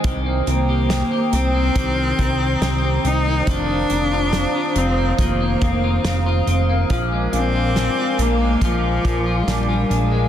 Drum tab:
HH |xxxxxxxx|xxxxxxxx|xxxxxxxx|
SD |--o---o-|--o---o-|--o---o-|
BD |o---oo--|o---oo--|o---oo--|